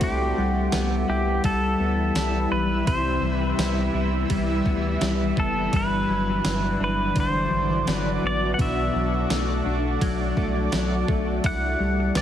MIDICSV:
0, 0, Header, 1, 7, 480
1, 0, Start_track
1, 0, Tempo, 714286
1, 9, Time_signature, 4, 2, 24, 8
1, 8210, End_track
2, 0, Start_track
2, 0, Title_t, "Vibraphone"
2, 0, Program_c, 0, 11
2, 256, Note_on_c, 0, 78, 62
2, 1581, Note_off_c, 0, 78, 0
2, 8175, Note_on_c, 0, 79, 56
2, 8210, Note_off_c, 0, 79, 0
2, 8210, End_track
3, 0, Start_track
3, 0, Title_t, "Pedal steel guitar"
3, 0, Program_c, 1, 26
3, 23, Note_on_c, 1, 67, 92
3, 728, Note_off_c, 1, 67, 0
3, 736, Note_on_c, 1, 67, 88
3, 956, Note_off_c, 1, 67, 0
3, 976, Note_on_c, 1, 69, 92
3, 1689, Note_off_c, 1, 69, 0
3, 1691, Note_on_c, 1, 71, 96
3, 1929, Note_off_c, 1, 71, 0
3, 1932, Note_on_c, 1, 72, 102
3, 2247, Note_off_c, 1, 72, 0
3, 2247, Note_on_c, 1, 71, 102
3, 2383, Note_off_c, 1, 71, 0
3, 3626, Note_on_c, 1, 69, 70
3, 3865, Note_off_c, 1, 69, 0
3, 3873, Note_on_c, 1, 71, 93
3, 4588, Note_off_c, 1, 71, 0
3, 4596, Note_on_c, 1, 71, 93
3, 4829, Note_off_c, 1, 71, 0
3, 4839, Note_on_c, 1, 72, 104
3, 5322, Note_off_c, 1, 72, 0
3, 5322, Note_on_c, 1, 71, 104
3, 5555, Note_on_c, 1, 74, 95
3, 5565, Note_off_c, 1, 71, 0
3, 5737, Note_off_c, 1, 74, 0
3, 5739, Note_on_c, 1, 78, 80
3, 5778, Note_off_c, 1, 78, 0
3, 5789, Note_on_c, 1, 76, 99
3, 6232, Note_off_c, 1, 76, 0
3, 7702, Note_on_c, 1, 78, 109
3, 8178, Note_off_c, 1, 78, 0
3, 8181, Note_on_c, 1, 76, 90
3, 8210, Note_off_c, 1, 76, 0
3, 8210, End_track
4, 0, Start_track
4, 0, Title_t, "Ambient pad"
4, 0, Program_c, 2, 92
4, 6, Note_on_c, 2, 64, 66
4, 7, Note_on_c, 2, 55, 73
4, 8, Note_on_c, 2, 76, 85
4, 9, Note_on_c, 2, 52, 75
4, 3821, Note_off_c, 2, 55, 0
4, 3821, Note_off_c, 2, 64, 0
4, 3822, Note_off_c, 2, 76, 0
4, 3848, Note_on_c, 2, 66, 74
4, 3850, Note_on_c, 2, 62, 65
4, 3854, Note_on_c, 2, 74, 84
4, 5742, Note_off_c, 2, 52, 0
4, 5752, Note_off_c, 2, 74, 0
4, 5769, Note_on_c, 2, 57, 70
4, 5772, Note_on_c, 2, 74, 82
4, 7662, Note_off_c, 2, 66, 0
4, 7663, Note_off_c, 2, 62, 0
4, 7670, Note_off_c, 2, 57, 0
4, 7671, Note_off_c, 2, 74, 0
4, 7689, Note_on_c, 2, 64, 72
4, 7691, Note_on_c, 2, 55, 70
4, 7693, Note_on_c, 2, 52, 75
4, 7694, Note_on_c, 2, 76, 82
4, 8210, Note_off_c, 2, 52, 0
4, 8210, Note_off_c, 2, 55, 0
4, 8210, Note_off_c, 2, 64, 0
4, 8210, Note_off_c, 2, 76, 0
4, 8210, End_track
5, 0, Start_track
5, 0, Title_t, "Clean electric guitar"
5, 0, Program_c, 3, 27
5, 0, Note_on_c, 3, 60, 61
5, 14, Note_on_c, 3, 64, 67
5, 251, Note_on_c, 3, 55, 61
5, 488, Note_off_c, 3, 60, 0
5, 490, Note_on_c, 3, 59, 58
5, 720, Note_off_c, 3, 64, 0
5, 728, Note_on_c, 3, 64, 68
5, 965, Note_off_c, 3, 55, 0
5, 968, Note_on_c, 3, 55, 68
5, 1207, Note_off_c, 3, 59, 0
5, 1210, Note_on_c, 3, 59, 54
5, 1449, Note_off_c, 3, 55, 0
5, 1451, Note_on_c, 3, 55, 59
5, 1929, Note_off_c, 3, 64, 0
5, 1931, Note_on_c, 3, 48, 78
5, 1936, Note_on_c, 3, 64, 61
5, 1951, Note_off_c, 3, 59, 0
5, 2169, Note_off_c, 3, 55, 0
5, 2172, Note_on_c, 3, 55, 60
5, 2408, Note_on_c, 3, 59, 60
5, 2642, Note_off_c, 3, 64, 0
5, 2650, Note_on_c, 3, 64, 67
5, 2884, Note_off_c, 3, 55, 0
5, 2887, Note_on_c, 3, 55, 68
5, 3129, Note_off_c, 3, 59, 0
5, 3131, Note_on_c, 3, 59, 54
5, 3366, Note_off_c, 3, 55, 0
5, 3369, Note_on_c, 3, 55, 65
5, 3609, Note_off_c, 3, 59, 0
5, 3612, Note_on_c, 3, 59, 59
5, 3850, Note_off_c, 3, 48, 0
5, 3850, Note_off_c, 3, 64, 0
5, 3851, Note_on_c, 3, 43, 75
5, 3857, Note_on_c, 3, 62, 66
5, 4088, Note_off_c, 3, 55, 0
5, 4091, Note_on_c, 3, 54, 61
5, 4570, Note_off_c, 3, 62, 0
5, 4572, Note_on_c, 3, 62, 68
5, 4815, Note_on_c, 3, 50, 69
5, 5291, Note_off_c, 3, 54, 0
5, 5294, Note_on_c, 3, 54, 62
5, 5530, Note_off_c, 3, 59, 0
5, 5532, Note_on_c, 3, 59, 61
5, 5768, Note_off_c, 3, 50, 0
5, 5770, Note_off_c, 3, 43, 0
5, 5770, Note_on_c, 3, 47, 83
5, 5771, Note_off_c, 3, 62, 0
5, 5774, Note_on_c, 3, 62, 62
5, 6008, Note_off_c, 3, 54, 0
5, 6011, Note_on_c, 3, 54, 60
5, 6245, Note_off_c, 3, 59, 0
5, 6248, Note_on_c, 3, 57, 59
5, 6480, Note_off_c, 3, 62, 0
5, 6488, Note_on_c, 3, 62, 65
5, 6721, Note_off_c, 3, 54, 0
5, 6729, Note_on_c, 3, 54, 65
5, 6960, Note_off_c, 3, 57, 0
5, 6968, Note_on_c, 3, 57, 60
5, 7200, Note_off_c, 3, 54, 0
5, 7208, Note_on_c, 3, 54, 62
5, 7439, Note_off_c, 3, 57, 0
5, 7447, Note_on_c, 3, 57, 62
5, 7688, Note_off_c, 3, 62, 0
5, 7690, Note_off_c, 3, 47, 0
5, 7691, Note_on_c, 3, 64, 63
5, 7736, Note_off_c, 3, 54, 0
5, 7736, Note_off_c, 3, 57, 0
5, 7926, Note_on_c, 3, 55, 59
5, 8166, Note_on_c, 3, 59, 58
5, 8210, Note_off_c, 3, 55, 0
5, 8210, Note_off_c, 3, 59, 0
5, 8210, Note_off_c, 3, 64, 0
5, 8210, End_track
6, 0, Start_track
6, 0, Title_t, "Sub bass"
6, 0, Program_c, 4, 38
6, 9, Note_on_c, 4, 36, 101
6, 220, Note_off_c, 4, 36, 0
6, 255, Note_on_c, 4, 36, 94
6, 464, Note_off_c, 4, 36, 0
6, 493, Note_on_c, 4, 36, 115
6, 702, Note_off_c, 4, 36, 0
6, 731, Note_on_c, 4, 36, 100
6, 941, Note_off_c, 4, 36, 0
6, 968, Note_on_c, 4, 36, 100
6, 1180, Note_off_c, 4, 36, 0
6, 1208, Note_on_c, 4, 38, 94
6, 1420, Note_off_c, 4, 38, 0
6, 1444, Note_on_c, 4, 36, 97
6, 1658, Note_off_c, 4, 36, 0
6, 1688, Note_on_c, 4, 35, 94
6, 1899, Note_off_c, 4, 35, 0
6, 1930, Note_on_c, 4, 36, 97
6, 2141, Note_off_c, 4, 36, 0
6, 2159, Note_on_c, 4, 36, 99
6, 2375, Note_off_c, 4, 36, 0
6, 2404, Note_on_c, 4, 36, 107
6, 2618, Note_off_c, 4, 36, 0
6, 2645, Note_on_c, 4, 36, 94
6, 2858, Note_off_c, 4, 36, 0
6, 2889, Note_on_c, 4, 36, 102
6, 3100, Note_off_c, 4, 36, 0
6, 3129, Note_on_c, 4, 38, 84
6, 3340, Note_off_c, 4, 38, 0
6, 3370, Note_on_c, 4, 36, 88
6, 3581, Note_off_c, 4, 36, 0
6, 3608, Note_on_c, 4, 30, 89
6, 3820, Note_off_c, 4, 30, 0
6, 3850, Note_on_c, 4, 31, 105
6, 4061, Note_off_c, 4, 31, 0
6, 4088, Note_on_c, 4, 31, 102
6, 4300, Note_off_c, 4, 31, 0
6, 4333, Note_on_c, 4, 31, 115
6, 4543, Note_off_c, 4, 31, 0
6, 4569, Note_on_c, 4, 31, 91
6, 4780, Note_off_c, 4, 31, 0
6, 4810, Note_on_c, 4, 31, 99
6, 5021, Note_off_c, 4, 31, 0
6, 5053, Note_on_c, 4, 33, 95
6, 5262, Note_off_c, 4, 33, 0
6, 5289, Note_on_c, 4, 31, 96
6, 5500, Note_off_c, 4, 31, 0
6, 5532, Note_on_c, 4, 33, 96
6, 5742, Note_off_c, 4, 33, 0
6, 5771, Note_on_c, 4, 35, 104
6, 5981, Note_off_c, 4, 35, 0
6, 6012, Note_on_c, 4, 35, 99
6, 6222, Note_off_c, 4, 35, 0
6, 6251, Note_on_c, 4, 35, 110
6, 6461, Note_off_c, 4, 35, 0
6, 6488, Note_on_c, 4, 35, 102
6, 6700, Note_off_c, 4, 35, 0
6, 6729, Note_on_c, 4, 35, 86
6, 6940, Note_off_c, 4, 35, 0
6, 6969, Note_on_c, 4, 36, 90
6, 7181, Note_off_c, 4, 36, 0
6, 7209, Note_on_c, 4, 35, 89
6, 7420, Note_off_c, 4, 35, 0
6, 7450, Note_on_c, 4, 35, 90
6, 7661, Note_off_c, 4, 35, 0
6, 7689, Note_on_c, 4, 36, 100
6, 7900, Note_off_c, 4, 36, 0
6, 7928, Note_on_c, 4, 36, 105
6, 8140, Note_off_c, 4, 36, 0
6, 8165, Note_on_c, 4, 36, 120
6, 8210, Note_off_c, 4, 36, 0
6, 8210, End_track
7, 0, Start_track
7, 0, Title_t, "Drums"
7, 6, Note_on_c, 9, 51, 59
7, 9, Note_on_c, 9, 36, 112
7, 73, Note_off_c, 9, 51, 0
7, 76, Note_off_c, 9, 36, 0
7, 486, Note_on_c, 9, 51, 57
7, 487, Note_on_c, 9, 38, 117
7, 487, Note_on_c, 9, 54, 66
7, 553, Note_off_c, 9, 51, 0
7, 554, Note_off_c, 9, 38, 0
7, 554, Note_off_c, 9, 54, 0
7, 967, Note_on_c, 9, 51, 54
7, 969, Note_on_c, 9, 36, 86
7, 1034, Note_off_c, 9, 51, 0
7, 1036, Note_off_c, 9, 36, 0
7, 1448, Note_on_c, 9, 51, 47
7, 1450, Note_on_c, 9, 38, 108
7, 1450, Note_on_c, 9, 54, 66
7, 1515, Note_off_c, 9, 51, 0
7, 1517, Note_off_c, 9, 38, 0
7, 1517, Note_off_c, 9, 54, 0
7, 1930, Note_on_c, 9, 36, 114
7, 1930, Note_on_c, 9, 51, 62
7, 1997, Note_off_c, 9, 36, 0
7, 1997, Note_off_c, 9, 51, 0
7, 2411, Note_on_c, 9, 51, 59
7, 2412, Note_on_c, 9, 38, 116
7, 2412, Note_on_c, 9, 54, 67
7, 2478, Note_off_c, 9, 51, 0
7, 2479, Note_off_c, 9, 38, 0
7, 2479, Note_off_c, 9, 54, 0
7, 2888, Note_on_c, 9, 51, 55
7, 2890, Note_on_c, 9, 36, 85
7, 2956, Note_off_c, 9, 51, 0
7, 2957, Note_off_c, 9, 36, 0
7, 3129, Note_on_c, 9, 36, 86
7, 3196, Note_off_c, 9, 36, 0
7, 3368, Note_on_c, 9, 51, 47
7, 3370, Note_on_c, 9, 38, 101
7, 3370, Note_on_c, 9, 54, 59
7, 3435, Note_off_c, 9, 51, 0
7, 3437, Note_off_c, 9, 54, 0
7, 3438, Note_off_c, 9, 38, 0
7, 3609, Note_on_c, 9, 36, 101
7, 3677, Note_off_c, 9, 36, 0
7, 3850, Note_on_c, 9, 51, 61
7, 3851, Note_on_c, 9, 36, 114
7, 3917, Note_off_c, 9, 51, 0
7, 3918, Note_off_c, 9, 36, 0
7, 4332, Note_on_c, 9, 38, 113
7, 4332, Note_on_c, 9, 51, 60
7, 4332, Note_on_c, 9, 54, 65
7, 4399, Note_off_c, 9, 38, 0
7, 4399, Note_off_c, 9, 51, 0
7, 4399, Note_off_c, 9, 54, 0
7, 4809, Note_on_c, 9, 51, 51
7, 4811, Note_on_c, 9, 36, 85
7, 4876, Note_off_c, 9, 51, 0
7, 4878, Note_off_c, 9, 36, 0
7, 5291, Note_on_c, 9, 51, 47
7, 5293, Note_on_c, 9, 38, 107
7, 5293, Note_on_c, 9, 54, 61
7, 5358, Note_off_c, 9, 51, 0
7, 5360, Note_off_c, 9, 38, 0
7, 5360, Note_off_c, 9, 54, 0
7, 5772, Note_on_c, 9, 36, 115
7, 5774, Note_on_c, 9, 51, 60
7, 5839, Note_off_c, 9, 36, 0
7, 5841, Note_off_c, 9, 51, 0
7, 6252, Note_on_c, 9, 38, 114
7, 6252, Note_on_c, 9, 51, 60
7, 6252, Note_on_c, 9, 54, 69
7, 6319, Note_off_c, 9, 51, 0
7, 6319, Note_off_c, 9, 54, 0
7, 6320, Note_off_c, 9, 38, 0
7, 6729, Note_on_c, 9, 36, 84
7, 6731, Note_on_c, 9, 51, 59
7, 6797, Note_off_c, 9, 36, 0
7, 6798, Note_off_c, 9, 51, 0
7, 6969, Note_on_c, 9, 36, 81
7, 7036, Note_off_c, 9, 36, 0
7, 7205, Note_on_c, 9, 51, 49
7, 7207, Note_on_c, 9, 54, 63
7, 7208, Note_on_c, 9, 38, 107
7, 7272, Note_off_c, 9, 51, 0
7, 7274, Note_off_c, 9, 54, 0
7, 7275, Note_off_c, 9, 38, 0
7, 7449, Note_on_c, 9, 36, 102
7, 7516, Note_off_c, 9, 36, 0
7, 7687, Note_on_c, 9, 51, 60
7, 7689, Note_on_c, 9, 36, 113
7, 7755, Note_off_c, 9, 51, 0
7, 7756, Note_off_c, 9, 36, 0
7, 8167, Note_on_c, 9, 38, 114
7, 8167, Note_on_c, 9, 51, 60
7, 8167, Note_on_c, 9, 54, 67
7, 8210, Note_off_c, 9, 38, 0
7, 8210, Note_off_c, 9, 51, 0
7, 8210, Note_off_c, 9, 54, 0
7, 8210, End_track
0, 0, End_of_file